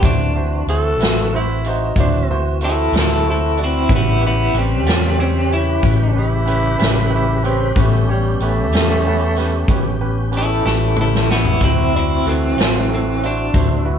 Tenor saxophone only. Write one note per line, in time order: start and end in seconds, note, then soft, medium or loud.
0.69 1.31 A4 medium
1.36 1.69 E4 medium
1.68 1.97 D#4 medium
2.00 2.45 D4 medium
6.18 7.10 E4 medium
7.15 7.44 E4 medium
7.45 7.82 C4 medium
7.80 8.09 A3 medium
8.10 8.44 G3 medium
8.42 10.14 A3 loud